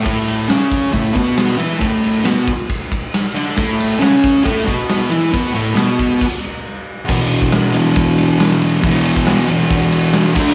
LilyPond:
<<
  \new Staff \with { instrumentName = "Distorted electric guitar" } { \clef bass \time 4/4 \key a \major \tempo 4 = 136 <a, a>4 <cis cis'>4 <a, a>8 <b, b>4 <e e'>8 | <a, a>4 <b, b>8 r2 <d d'>8 | <a, a>4 <cis cis'>4 <a, a>8 <b, b>4 <e e'>8 | <b, b>8 <a, a>8 <b, b>4 r2 |
<e, b, e>4. <e, b, e>2~ <e, b, e>8 | <e, b, e>4. <e, b, e>2 <d a d'>8 | }
  \new DrumStaff \with { instrumentName = "Drums" } \drummode { \time 4/4 <bd cymr>8 cymr8 <cymr sn>8 <bd cymr>8 <bd cymr>8 <bd cymr>8 <cymr sn>8 cymr8 | <bd cymr>8 cymr8 <cymr sn>8 <bd cymr>8 <bd cymr>8 <bd cymr>8 <cymr sn>8 cymr8 | <bd cymr>8 cymr8 <cymr sn>8 <bd cymr>8 <bd cymr>8 <bd cymr>8 <cymr sn>8 cymr8 | <bd cymr>8 cymr8 <cymr sn>8 <bd cymr>8 <cymc bd>4 r4 |
<cymc bd>8 cymr16 bd16 <cymr sn>8 cymr16 sn16 <bd cymr>8 cymr8 <cymr sn>16 sn16 cymr8 | <bd cymr>8 cymr16 bd16 <cymr sn>8 cymr8 <bd cymr>8 cymr8 <cymr sn>16 sn16 <cymc bd>8 | }
>>